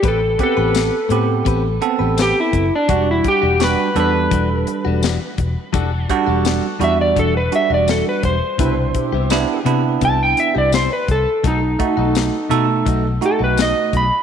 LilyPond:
<<
  \new Staff \with { instrumentName = "Electric slide guitar" } { \time 4/4 \key e \minor \tempo 4 = 84 a'8 a'2 r8 g'16 e'8 d'16~ | d'16 e'16 g'8 b'8 b'2~ b'8~ | b'8 r4 e''16 d''16 a'16 b'16 e''16 d''16 a'16 b'16 c''8~ | c''4. r8 a''16 g''16 e''16 d''16 c''16 b'16 a'8 |
dis'2 r8 a'16 b'16 dis''8 b''8 | }
  \new Staff \with { instrumentName = "Horn section" } { \time 4/4 \key e \minor <c' g' b'>16 r16 <g' b'>4 r2 r8 | <d' fis' g'>16 r16 <d' g' fis''>4 r2 r8 | <d' fis' a'>16 r16 <d' fis' a'>4 r2 r8 | <c' e' b'>16 r16 <c' e' g'>4 r2 r8 |
<b dis' a'>16 r16 <b dis' a'>4 r2 r8 | }
  \new Staff \with { instrumentName = "Clean electric guitar" } { \time 4/4 \key e \minor <a c' g' b'>16 r8 <c' g' b'>16 r8 <a c' g' b'>16 r16 <a c' g' b'>16 r8 <c' g' b'>16 <a c' g' b'>16 r8. | <e g d' fis'>16 r8 <g d' fis'>16 r8 <e g d' fis'>16 r16 <e g d' fis'>16 r8 <g d' fis'>16 <e g d' fis'>16 r8. | <e g d' fis'>16 r8 <g d' fis'>16 r8 <e g d' fis'>16 r16 <e g d' fis'>16 r8 <g d' fis'>16 <e g d' fis'>16 r8. | <c b e' g'>16 r8 <b e' g'>16 r8 <c b e' g'>16 r16 <c b e' g'>16 r8 <b e' g'>16 <c b e' g'>16 r8. |
<b, a dis' fis'>16 r8 <a dis' fis'>16 r8 <b, a dis' fis'>16 r16 <b, a dis' fis'>16 r8 <a dis' fis'>16 <b, a dis' fis'>16 r8. | }
  \new Staff \with { instrumentName = "Tine electric piano" } { \time 4/4 \key e \minor r8 <b c' g'>4 <b c' g'>4 <b c' a'>4 r8 | <g d' fis'>4 <g d' fis'>8 <g d' a'>4. r4 | r8 <g d' fis'>4 <g d' fis'>4 <g d' fis'>4 r8 | <b, d' e'>4 <b d' e'>8 <b d' e'>4. r4 |
r8 <a dis' fis'>4 <a dis' a'>4 <a dis' fis'>4 r8 | }
  \new Staff \with { instrumentName = "Fingered electric bass" } { \clef bass \time 4/4 \key e \minor a,,8 r16 a,,8 r16 a,8 a,,8 r16 a,,8 r16 fis,,16 r16 | e,,8 r16 e,,8 r16 e,8 e,,8 r16 e,,8 r16 e,,16 r16 | e,,8 r16 e,,8 r16 e,8 e,,8 r16 e,,8 r16 e,,16 r16 | c,8 r16 c,8 r16 c8 c,8 r16 c,8 r16 c,16 r16 |
b,,8 r16 b,,8 r16 b,8 b,,8 r16 b,,8 r16 b,,16 r16 | }
  \new DrumStaff \with { instrumentName = "Drums" } \drummode { \time 4/4 <hh bd>8 <hh bd>8 <hh sn tamb>8 hh8 <hh bd>8 hh8 <hh sn tamb>8 <hh bd>8 | <hh bd>8 <hh bd>8 <hh sn tamb>8 hh8 <hh bd>8 hh8 <hh sn tamb>8 <hh bd>8 | <hh bd>8 <hh bd>8 <hh sn tamb>8 hh8 <hh bd>8 hh8 <hh sn tamb>8 <hh bd>8 | <hh bd>8 <hh bd>8 <hh sn tamb>8 hh8 <hh bd>8 hh8 <hh sn tamb>8 <hh bd>8 |
<hh bd>8 <hh bd>8 <hh sn tamb>8 hh8 <hh bd>8 hh8 <hh sn tamb>8 <hh bd>8 | }
>>